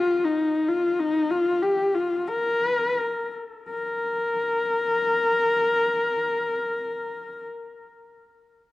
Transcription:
Already playing: F4
0.24 D#4
0.69 F4
1.00 D#4
1.31 F4
1.62 G4
1.95 F4
2.28 A#4
3.69 A#4

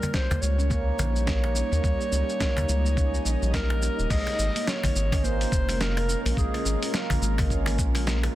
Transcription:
Already playing: D#4 G4 A#4 C#5
0.02 A#3, cajon bass, shaker
0.14 C5, kick, snare, shaker
0.31 D#2, cajon bass, cajon slap, shaker
0.41 C#2 C#5, shaker
0.58 C#4, shaker
0.70 A#3, kick, shaker
0.99 A#1, cajon bass, shaker
1.15 G3, shaker
1.27 A#3, kick, snare, shaker
1.44 cajon slap
1.55 C#4, shaker
1.72 D#2 A#3, shaker
1.83 D#2 G3 D#5, kick, shaker
2.00 A#3, shaker
2.12 C#2 C#4, shaker
2.29 shaker
2.40 A#3, kick, snare, shaker
2.57 D#2, cajon bass, cajon slap, shaker
2.68 C#2 G3, shaker
2.85 A#3, shaker
2.97 C#4, kick, shaker
3.14 shaker
3.25 A#1 A#3, shaker
3.42 A#1 G3, shaker
3.53 A#3 A#4, kick, snare, shaker
3.70 cajon slap
3.81 C#4, cajon slap, shaker
3.99 D#1, shaker
4.10 A#1 G#3 A#3 C#4 F4 A#4 D#5, kick, crash, shaker
4.27 cajon slap, open hi-hat
4.39 G#1, shaker
4.55 A#3, open hi-hat, shaker
4.68 C#5, snare, shaker
4.83 A#1, cajon bass, open hi-hat, shaker
4.95 G#1, shaker
5.12 C#4, kick, cajon bass, cajon slap, open hi-hat, shaker
5.24 A#3 C5, shaker
5.41 open hi-hat, shaker
5.52 F1, kick, shaker
5.69 G#3, cajon slap, open hi-hat, shaker
5.80 A#3 A#4, snare, shaker
5.97 cajon slap, open hi-hat
6.09 C#4, shaker
6.25 A#1 A#3, cajon slap, open hi-hat, shaker
6.37 A#1 G#3 G#4, kick, shaker
6.54 A#3, cajon slap, open hi-hat
6.65 G#1 C#4, shaker
6.83 open hi-hat, shaker
6.93 A#3 A#4, snare, shaker
7.10 A#1, cajon bass, open hi-hat, shaker
7.21 G#1 G#3, shaker
7.38 A#3, kick, cajon bass, cajon slap, open hi-hat, shaker
7.50 C#4, kick, shaker
7.66 cajon slap, open hi-hat, shaker
7.78 A#1 A#3, kick, shaker
7.95 G#3, cajon slap, open hi-hat, shaker
8.07 A#3, snare, shaker
8.23 cajon slap, open hi-hat

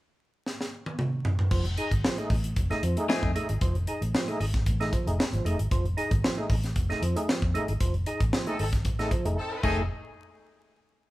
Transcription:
0.46 snare
0.61 snare
0.86 high tom
0.99 mid tom
1.25 floor tom
1.39 floor tom
1.51 F1 F3, kick, crash
1.65 closed hi-hat
1.77 D#4 G#4, closed hi-hat
1.91 G#1, kick, closed hi-hat
2.04 F3, snare
2.18 A3 D#4 G#4, closed hi-hat
2.30 A1 D#4 G#4, kick, open hi-hat
2.44 closed hi-hat
2.56 F1, kick, closed hi-hat
2.70 A3 D#4 G#4, snare, closed hi-hat
2.83 F2 F3, closed hi-hat
2.97 A3 D#4 G#4, closed hi-hat
3.09 F3 A3 D#4 G#4, snare
3.23 F2, kick
3.35 A3 D#4 G#4, closed hi-hat
3.49 G#1 D#4 G#4, closed hi-hat
3.61 F1 F3, kick, closed hi-hat
3.75 closed hi-hat
3.87 D#4 G#4, closed hi-hat
4.01 A1, closed hi-hat
4.14 F3, snare
4.28 A3 D#4 G#4, closed hi-hat
4.40 G#1 D#4 G#4, open hi-hat
4.54 kick, snare, closed hi-hat
4.66 A1, kick, closed hi-hat
4.80 A3 D#4 G#4, snare, closed hi-hat
4.93 F3, kick, closed hi-hat
5.06 F1 A3 D#4 G#4, closed hi-hat
5.19 D#4 G#4, snare
5.32 G#1 F3, closed hi-hat
5.45 F1 A3 D#4 G#4, closed hi-hat
5.59 G#1, closed hi-hat
5.71 F1 F3, kick, closed hi-hat
5.85 closed hi-hat
5.97 D#4 G#4, closed hi-hat
6.11 G#1, kick, closed hi-hat
6.24 F3, snare
6.37 A3 D#4 G#4
6.50 A1 D#4 G#4, kick, open hi-hat
6.64 snare, closed hi-hat
6.76 F1, kick, closed hi-hat
6.89 A3 D#4 G#4, snare, closed hi-hat
7.02 F2 F3, closed hi-hat
7.16 A3 D#4 G#4, closed hi-hat
7.29 F3, snare
7.42 F2, kick
7.54 A3 D#4 G#4, closed hi-hat
7.68 G#1 D#4 G#4, closed hi-hat
7.80 F1 F3, kick, closed hi-hat
7.94 closed hi-hat
8.06 D#4 G#4, closed hi-hat
8.20 A1, kick, closed hi-hat
8.33 F3, snare
8.47 A3 C4 D#4 G#4 A4, closed hi-hat
8.59 G#1 C4 D#4 G#4 A4, open hi-hat
8.73 kick, snare, closed hi-hat
8.85 A1, kick, closed hi-hat
8.99 A3 C4 D#4 G#4 A4, snare, closed hi-hat
9.11 F3, kick, closed hi-hat
9.25 F1 A3 D#4 G#4, closed hi-hat
9.37 C4 D#4 A4
9.63 F1 D#3 A3 C4 D#4 G#4 A4, kick, crash

